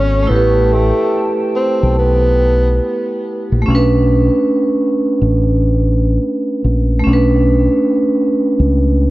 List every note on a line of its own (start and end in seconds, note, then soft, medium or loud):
0.00 0.25 G#1 medium
0.00 0.21 B3 medium
0.00 0.30 C#4 loud
0.00 0.23 F#4 medium
0.00 0.26 A4 medium
0.00 0.26 C#5 medium
0.00 0.28 C#5 medium
0.00 0.26 C#6 medium
0.22 3.60 A3 medium
0.27 0.90 A1 loud
0.27 0.74 B3 medium
0.27 3.62 E4 medium
0.27 3.63 A4 medium
0.27 3.63 G5 medium
0.27 3.64 A5 medium
0.31 3.64 G4 medium
0.36 3.67 B4 medium
0.73 1.33 A3 medium
1.56 1.95 C4 medium
1.83 2.79 B1 loud
1.99 3.21 B3 medium
3.52 3.66 A#1 medium
3.62 6.98 A3 medium
3.62 7.01 C#4 medium
3.68 4.28 B1 loud
3.68 7.03 D4 medium
3.75 7.05 B4 medium
5.21 6.17 A1 medium
6.64 7.01 A#1 medium
6.99 9.10 A3 medium
7.04 7.67 B1 medium
7.04 9.10 C#4 medium
7.08 9.10 D4 medium
7.13 9.10 B4 medium
8.59 9.10 C#2 medium